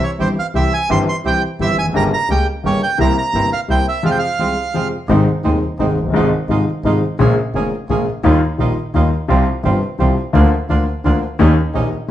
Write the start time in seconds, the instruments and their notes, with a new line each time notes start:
0.03 bandoneon C#5
0.18 grand piano G1 G2 E3 G3 C4 G4, double bass G1, bandoneon C4 E4 G4 C5
0.39 bandoneon F5
0.54 grand piano C2 C3 E3 G3 C4 G4, double bass C2, bandoneon C4 E4 G4 E5
0.74 bandoneon G#5
0.89 grand piano G1 G2 E3 G3 C4 G4, double bass G1, bandoneon C4 E4 G4 C6
1.09 bandoneon C6
1.24 grand piano C2 C3 E3 G3 C4 G4, double bass C2, bandoneon C4 E4 G4 G5
1.59 grand piano G1 G2 E3 G3 C4 G4, double bass G1, bandoneon C4 E4 G4 E5
1.78 double bass F1, grand piano E2, bandoneon G#5
1.86 grand piano F2
1.90 grand piano F#2
1.94 grand piano G1 G2 C#3 G3 A#3 G4, double bass G1, bandoneon A#3 C#4 G4 A#5
2.14 bandoneon A#5
2.28 grand piano C#2 C#3 G3 A#3 G4, double bass C#2, bandoneon A#3 C#4 G4 G5
2.64 grand piano G1 G2 C#3 G3 A#3 G4, double bass G1, bandoneon A#3 C#4 G4 C#5
2.83 bandoneon G5
2.98 grand piano C2 C3 G3 A#3 E4, double bass C2, bandoneon A#3 C4 E4 A#5
3.18 bandoneon A#5
3.33 grand piano G1 G2 C3 G3 A#3 E4, double bass G1, bandoneon A#3 C4 E4
3.53 bandoneon F5
3.68 grand piano C2 C3 G3 A#3 E4, double bass C2, bandoneon A#3 C4 E4 G5
3.89 bandoneon E5
4.03 grand piano F2 C3 F3 G#3 F4, bandoneon G#3 C4 F4 F5
4.11 bandoneon G5
4.18 bandoneon F5
4.39 grand piano C2 C3 F3 G#3 F4, bandoneon G#3 C4 F4
4.74 grand piano F2 C3 F3 G#3 F4, bandoneon G#3 C4 F4
5.08 double bass G#1, grand piano G#1 G#2 C3 D#3 G#3 D#4, bandoneon G#3 C4 D#4
5.44 grand piano D#1 D#2 C3 D#3 G#3 D#4, double bass D#2, bandoneon G#3 C4 D#4
5.79 double bass G#1, grand piano G#1 G#2 C3 D#3 G#3 D#4, bandoneon G#3 C4 D#4
5.96 double bass F#1
6.02 grand piano F1
6.06 grand piano F#1 G1
6.13 grand piano G#1 G#2 C3 F3 G#3 D#4, double bass G#1, bandoneon G#3 D#4 F4
6.49 grand piano G#1 G#2 C3 F3 G#3 D#4, double bass G#1, bandoneon G#3 D#4 F4
6.84 double bass G#1, grand piano G#1 G#2 C3 F3 G#3 D#4, bandoneon G#3 D#4 F4
7.19 grand piano A#1 A#2 C#3 G#3 A#3 F4, double bass A#1, bandoneon A#3 C#4 G#4
7.54 grand piano F1 F2 C#3 G#3 A#3 F4, double bass F1, bandoneon A#3 C#4 G#4
7.89 double bass A#1, grand piano A#1 A#2 C#3 G#3 A#3 F4, bandoneon A#3 C#4 G#4
8.23 grand piano D#2 D#3 G3 A#3 F4, double bass D#2, bandoneon G3 D#4 F4
8.58 grand piano A#1 A#2 D#3 G3 A#3 F4, double bass A#1, bandoneon G3 D#4 F4
8.94 grand piano D#2 D#3 G3 A#3 F4, double bass D#2, bandoneon G3 D#4 F4
9.28 grand piano C2 C3 F3 G3 F4, double bass C2, bandoneon G3 C4 F4
9.63 grand piano G1 G2 C3 F3 G3 F4, double bass G1, bandoneon G3 C4 F4
9.99 grand piano C2 C3 F3 G3 F4, double bass C2, bandoneon G3 C4 F4
10.33 grand piano D2 D3 F3 A#3 F4, double bass D2, bandoneon A#3 D4 F4
10.69 grand piano D2 D3 F3 A#3 F4, double bass D2, bandoneon A#3 D4 F4
11.04 grand piano D2 D3 F3 A#3 F4, double bass D2, bandoneon A#3 D4 F4
11.39 grand piano D#2 D#3 A#3 C#4 G4, double bass D#2, bandoneon G3 C#4 D#4
11.74 grand piano A#1 A#2 D#3 A#3 C#4 G4, double bass A#1, bandoneon G3 C#4 D#4